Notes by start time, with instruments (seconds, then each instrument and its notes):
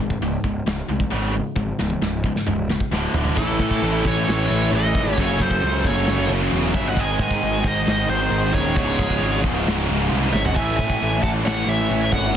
Already playing: distorted electric guitar C#2
0.00 picked electric bass G#1, distorted electric guitar G#2
0.10 kick
0.21 picked electric bass C#1, distorted electric guitar C#2 G#2, open hi-hat
0.44 picked electric bass C#1, distorted electric guitar C#2 G#2, kick
0.66 picked electric bass C#1, distorted electric guitar C#2 G#2, snare, open hi-hat
0.88 picked electric bass C2, distorted electric guitar C#2 G#2
1.00 kick
1.10 picked electric bass G#1, distorted electric guitar C#2 G#2 C#3, open hi-hat
1.33 distorted electric guitar C#2 G#2
1.56 picked electric bass G#1, distorted electric guitar C#2 G#2, kick
1.79 picked electric bass C#1, distorted electric guitar C#2 G#2, snare
1.90 high tom
2.01 picked electric bass C#1, distorted electric guitar C#2 G#2, snare
2.24 distorted electric guitar C#2 G#2, kick
2.36 snare
2.47 picked electric bass C#1, distorted electric guitar C#2 G#2, mid tom
2.69 distorted electric guitar C#2 G#2, snare
2.80 kick
2.91 picked electric bass D1, distorted electric guitar D2 A2 D3, snare
3.14 picked electric bass D1, distorted electric guitar D2 A2 D3, floor tom
3.25 floor tom
3.37 picked electric bass A1, distorted electric guitar A2 E3 A3, lead electric guitar E4 A4, kick, crash
3.45 distorted electric guitar A2 E3
3.53 distorted electric guitar A2 E3
3.59 picked electric bass A2, distorted electric guitar A2 E3, kick
3.69 distorted electric guitar A2 E3, kick
3.76 distorted electric guitar A2 E3
3.82 picked electric bass A1, distorted electric guitar A2 E3, crash
3.92 distorted electric guitar A2 E3
4.00 distorted electric guitar A2 E3
4.04 picked electric bass A1, distorted electric guitar A2 E3, lead electric guitar A4 C#5, kick
4.15 distorted electric guitar A2 E3
4.22 distorted electric guitar A2 E3
4.28 picked electric bass A1, distorted electric guitar A2, snare, crash
4.32 distorted electric guitar E3
4.39 distorted electric guitar A2 E3
4.46 distorted electric guitar A2 E3
4.51 picked electric bass A1, distorted electric guitar A2
4.55 distorted electric guitar E3
4.62 distorted electric guitar A2 E3
4.69 picked electric bass A1, distorted electric guitar A2 E3, crash
4.74 distorted electric guitar A2 E3, lead electric guitar A4 D#5
4.85 distorted electric guitar A2 E3
4.94 picked electric bass G#1, distorted electric guitar A2 E3, kick
5.01 distorted electric guitar A2 E3
5.09 distorted electric guitar A2 E3
5.17 picked electric bass F#1, distorted electric guitar F#2 C#3, lead electric guitar A4 C#5, kick, crash
5.21 distorted electric guitar F#2 F#3
5.26 distorted electric guitar C#3
5.32 distorted electric guitar F#2 C#3
5.39 picked electric bass F#1, distorted electric guitar F#2 C#3, lead electric guitar A4 C5, kick
5.47 distorted electric guitar F#2 C#3, kick
5.56 distorted electric guitar F#2 C#3
5.62 picked electric bass C#2, distorted electric guitar F#2 C#3, crash
5.71 distorted electric guitar F#2 C#3
5.80 distorted electric guitar F#2 C#3
5.84 picked electric bass F#1, distorted electric guitar F#2 C#3, lead electric guitar A4 C#5, kick
5.94 distorted electric guitar F#2 C#3
6.03 distorted electric guitar F#2 C#3, crash
6.08 picked electric bass F#1, distorted electric guitar F#2 C#3, snare
6.18 distorted electric guitar F#2 C#3
6.26 picked electric bass F#1, distorted electric guitar F#2 C#3
6.34 distorted electric guitar F#2 C#3
6.42 distorted electric guitar F#2 C#3
6.51 picked electric bass E1, distorted electric guitar F#2 C#3, crash
6.57 distorted electric guitar F#2 C#3
6.65 distorted electric guitar F#2 C#3
6.73 picked electric bass G1, distorted electric guitar F#2 C#3, lead electric guitar C#5 E5, kick
6.81 distorted electric guitar F#2 C#3
6.88 distorted electric guitar F#2 C#3, lead electric guitar D#5 F#5
6.96 picked electric bass G#1, distorted electric guitar G#2 D#3, lead electric guitar D#5, kick, crash
7.00 distorted electric guitar G#3, lead electric guitar G#5
7.04 distorted electric guitar G#2 D#3
7.11 distorted electric guitar G#2 D#3
7.19 distorted electric guitar G#2 D#3, picked electric bass G#2, lead electric guitar D#5 G#5, kick
7.27 distorted electric guitar G#2 D#3, kick
7.35 distorted electric guitar G#2 D#3
7.42 picked electric bass G#1, distorted electric guitar G#2 D#3, crash
7.50 distorted electric guitar G#2 D#3
7.58 distorted electric guitar G#2 D#3
7.64 picked electric bass G#1, distorted electric guitar G#2 D#3, lead electric guitar C5 D#5, kick
7.73 distorted electric guitar G#2 D#3
7.82 distorted electric guitar G#2 D#3
7.87 picked electric bass G#1, distorted electric guitar G#2 D#3, lead electric guitar C5 D#5, snare, crash
7.98 distorted electric guitar G#2 D#3
8.04 distorted electric guitar G#2 D#3
8.09 picked electric bass G#1, distorted electric guitar G#2, lead electric guitar G#4 C5
8.14 distorted electric guitar D#3
8.20 distorted electric guitar G#2 D#3
8.29 picked electric bass G#1, distorted electric guitar G#2 D#3, crash
8.37 distorted electric guitar G#2 D#3
8.44 distorted electric guitar G#2 D#3
8.52 picked electric bass D#1, distorted electric guitar G#2 D#3, lead electric guitar C#5, kick
8.56 distorted electric guitar G#2, lead electric guitar G#4
8.60 distorted electric guitar D#3
8.68 distorted electric guitar G#2 D#3
8.76 picked electric bass C#1, distorted electric guitar C#2 G#2 C#3, kick, crash
8.84 distorted electric guitar C#2 G#2
8.91 distorted electric guitar C#2 G#2
8.99 picked electric bass C#1, distorted electric guitar C#2 G#2, kick
9.07 distorted electric guitar C#2 G#2, kick
9.15 distorted electric guitar C#2 G#2
9.21 picked electric bass G#1, distorted electric guitar C#2 G#2, crash
9.30 distorted electric guitar C#2 G#2
9.38 distorted electric guitar C#2 G#2
9.44 picked electric bass C#1, distorted electric guitar C#2 G#2, kick
9.53 distorted electric guitar C#2 G#2
9.61 distorted electric guitar C#2 G#2
9.66 picked electric bass C#1, distorted electric guitar C#2 G#2, snare, crash
9.77 distorted electric guitar C#2 G#2
9.85 distorted electric guitar C#2 G#2
9.89 picked electric bass C#1, distorted electric guitar C#2
9.93 distorted electric guitar G#2
10.00 distorted electric guitar C#2 G#2
10.08 picked electric bass C2, distorted electric guitar C#2 G#2, crash
10.17 distorted electric guitar C#2 G#2
10.24 distorted electric guitar C#2 G#2
10.31 picked electric bass G#1, distorted electric guitar C#2 G#2, lead electric guitar C#5 E5
10.35 snare
10.39 distorted electric guitar C#2 G#2
10.45 distorted electric guitar C#2 G#2, lead electric guitar D#5 F#5, floor tom
10.54 picked electric bass A1, distorted electric guitar A2 E3 A3, lead electric guitar E5 G#5, kick, crash
10.64 distorted electric guitar A2 E3
10.71 distorted electric guitar A2 E3
10.77 picked electric bass A2, distorted electric guitar A2 E3, lead electric guitar E5 G#5, kick
10.87 distorted electric guitar A2 E3, kick
10.95 distorted electric guitar A2 E3
11.01 picked electric bass A1, distorted electric guitar A2 E3, crash
11.10 distorted electric guitar A2 E3
11.18 distorted electric guitar A2 E3
11.22 picked electric bass A1, distorted electric guitar A2, lead electric guitar F#5 A5, kick
11.27 distorted electric guitar E3
11.34 distorted electric guitar A2 E3
11.41 distorted electric guitar A2 E3
11.45 picked electric bass A1, lead electric guitar C#5 F#5, snare, crash
11.50 distorted electric guitar A2 E3
11.56 distorted electric guitar A2 E3
11.65 picked electric bass A1, distorted electric guitar A2 E3, lead electric guitar C#5
11.69 distorted electric guitar A2, lead electric guitar E5
11.73 distorted electric guitar E3
11.81 distorted electric guitar A2 E3
11.88 picked electric bass A1, distorted electric guitar A2 E3, crash
11.95 distorted electric guitar A2 E3
12.03 distorted electric guitar A2 E3
12.11 picked electric bass G#1, distorted electric guitar A2 E3, lead electric guitar F#5, kick
12.15 distorted electric guitar A2 E3, lead electric guitar C#5
12.27 distorted electric guitar A2 E3
12.34 distorted electric guitar F#2